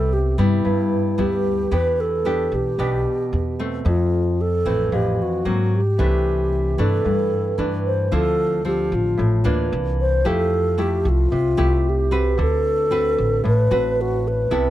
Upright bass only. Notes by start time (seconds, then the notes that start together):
Already playing: C2
0.39 G2
0.65 G2
1.18 D2
1.72 E2
2.52 B1
2.78 B1
3.33 E2
3.86 F2
4.65 A1
4.92 A1
5.45 G#2
5.99 C2
6.79 G2
7.05 G2
7.59 G2
8.12 D2
8.92 A1
9.19 A1
9.45 D2
9.72 C2
10.26 F2
11.05 C2
11.32 C2
11.58 C2
12.39 D2
13.18 A1
13.45 A1
13.71 A1
14.51 C2